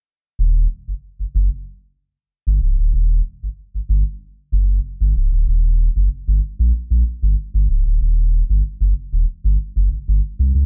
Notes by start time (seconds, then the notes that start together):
0.39 D#1
0.88 F#1
1.19 F#1
1.35 F#1
2.47 G1
2.61 C#1
2.79 D1
2.94 D#1
3.43 G1
3.74 G1
3.89 G1
4.52 F#1
5.01 G1
5.16 C#1
5.33 D1
5.47 D#1
5.96 F#1
6.28 G1
6.59 A#1
6.91 A#1
7.22 G1
7.54 G1
7.69 C#1
7.86 D1
8.01 D#1
8.50 G1
8.81 F#1
9.13 D#1
9.44 G1
9.76 F#1
9.92 G1
10.08 G1
10.39 C2
10.55 C#2